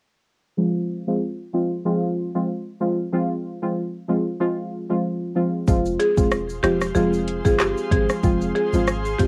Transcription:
0.57 1.03 F3 medium
0.57 1.03 G#3 medium
0.57 1.03 C4 medium
0.57 1.03 F4 loud
1.07 1.21 F3 medium
1.07 1.21 G#3 medium
1.07 1.21 C4 medium
1.07 1.22 F4 medium
1.53 1.71 F3 medium
1.53 1.71 G#3 medium
1.53 1.71 C4 medium
1.53 1.71 F4 medium
1.85 2.30 F3 medium
1.85 2.30 G#3 medium
1.85 2.31 C4 medium
1.85 2.31 F4 loud
2.35 2.49 F3 medium
2.35 2.49 G#3 medium
2.35 2.49 C4 medium
2.35 2.49 F4 medium
2.80 2.99 F3 medium
2.80 2.99 G#3 medium
2.80 2.99 C4 medium
2.80 2.99 F4 medium
3.12 3.58 F3 medium
3.12 3.58 G#3 medium
3.12 3.58 C4 medium
3.12 3.58 F4 loud
3.62 3.76 F3 medium
3.62 3.77 G#3 medium
3.62 3.77 C4 medium
3.62 3.77 F4 medium
4.08 4.26 F3 medium
4.08 4.26 G#3 medium
4.08 4.26 C4 medium
4.08 4.27 F4 medium
4.40 4.86 F3 loud
4.40 4.86 G#3 medium
4.40 4.86 C4 medium
4.40 4.86 F4 loud
4.90 5.32 F3 medium
4.90 5.32 G#3 medium
4.90 5.33 C4 medium
4.90 5.33 F4 medium
5.35 5.65 F3 medium
5.35 5.66 G#3 medium
5.35 5.66 C4 medium
5.35 5.66 F4 medium
5.68 5.97 F1 loud
5.68 6.13 F3 medium
5.68 6.13 G#3 medium
5.68 6.13 C4 medium
5.68 6.14 F4 loud
5.68 9.28 G#4 medium
5.68 9.28 C5 medium
5.68 9.28 F5 medium
5.68 9.28 C6 medium
5.68 kick loud
5.68 shaker medium
5.85 shaker medium
6.00 6.13 G#4 medium
6.00 closed hi-hat medium
6.00 shaker medium
6.17 6.60 E1 medium
6.17 6.32 F3 medium
6.17 6.32 G#3 medium
6.17 6.32 C4 medium
6.17 6.32 F4 medium
6.17 kick medium
6.17 shaker medium
6.31 cross-stick loud
6.31 shaker medium
6.49 shaker medium
6.63 6.92 E1 medium
6.63 6.81 F3 medium
6.63 6.82 G#3 medium
6.63 6.82 C4 medium
6.63 6.82 F4 medium
6.63 6.76 G4 medium
6.63 cross-stick loud
6.63 closed hi-hat medium
6.63 shaker medium
6.81 cross-stick medium
6.81 shaker medium
6.95 7.41 F1 loud
6.95 7.41 F3 loud
6.95 7.41 G#3 medium
6.95 7.41 C4 medium
6.95 7.41 F4 loud
6.95 7.08 G#4 medium
6.95 shaker medium
7.13 shaker medium
7.28 closed hi-hat medium
7.28 shaker medium
7.45 7.74 G1 medium
7.45 7.88 F3 medium
7.45 7.88 G#3 medium
7.45 7.88 C4 medium
7.45 7.88 F4 medium
7.45 7.55 G#4 medium
7.45 kick loud
7.45 shaker medium
7.59 7.72 G4 medium
7.59 cross-stick loud
7.59 clap loud
7.59 shaker medium
7.77 shaker medium
7.91 8.07 G#1 loud
7.91 8.21 F3 medium
7.91 8.21 G#3 medium
7.91 8.21 C4 medium
7.91 8.21 F4 medium
7.91 8.04 G#4 medium
7.91 kick loud
7.91 closed hi-hat medium
7.91 shaker medium
8.09 cross-stick medium
8.09 shaker medium
8.23 8.52 F1 loud
8.23 8.69 F3 loud
8.23 8.69 G#3 medium
8.23 8.69 C4 medium
8.23 8.69 F4 loud
8.23 kick loud
8.23 shaker medium
8.41 shaker medium
8.55 8.68 G#4 medium
8.55 closed hi-hat medium
8.55 shaker medium
8.73 9.15 G#1 loud
8.73 8.87 F3 medium
8.73 8.87 G#3 medium
8.73 8.88 C4 medium
8.73 8.88 F4 medium
8.73 shaker medium
8.87 cross-stick loud
8.87 shaker medium
9.05 shaker medium
9.18 9.28 G1 loud
9.18 9.28 F3 medium
9.18 9.28 G#3 medium
9.18 9.28 C4 medium
9.18 9.28 F4 medium
9.18 9.28 G4 medium
9.18 kick loud
9.18 closed hi-hat medium
9.18 shaker medium

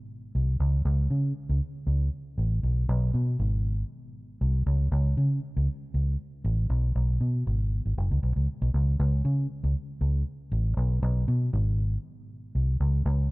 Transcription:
0.35 0.56 C2 medium
0.60 0.81 C#2 medium
0.85 1.07 C#2 loud
1.10 1.32 C#3 medium
1.49 1.59 C#2 medium
1.87 2.08 C#2 medium
2.38 2.59 A1 medium
2.63 2.84 B1 medium
2.89 3.10 B1 loud
3.14 3.35 B2 medium
3.39 3.82 G#1 medium
4.41 4.62 C2 medium
4.66 4.88 C#2 medium
4.92 5.13 C#2 loud
5.17 5.39 C#3 medium
5.57 5.67 C#2 medium
5.94 6.15 C#2 medium
6.44 6.66 A1 loud
6.70 6.91 B1 medium
6.95 7.17 B1 medium
7.21 7.42 B2 medium
7.47 7.79 G#1 medium
7.86 7.95 G#1 medium
7.98 8.09 F#1 medium
8.11 8.21 C#2 medium
8.23 8.34 B1 medium
8.36 8.46 C#2 medium
8.62 8.72 B1 loud
8.74 8.95 C#2 loud
9.00 9.21 C#2 loud
9.25 9.46 C#3 loud
9.64 9.73 C#2 medium
10.01 10.22 C#2 medium
10.52 10.73 A1 loud
10.77 10.98 B1 loud
11.03 11.24 B1 loud
11.28 11.49 B2 medium
11.53 11.96 G#1 loud
12.55 12.76 C2 medium
12.80 13.02 C#2 loud
13.06 13.27 C#2 loud

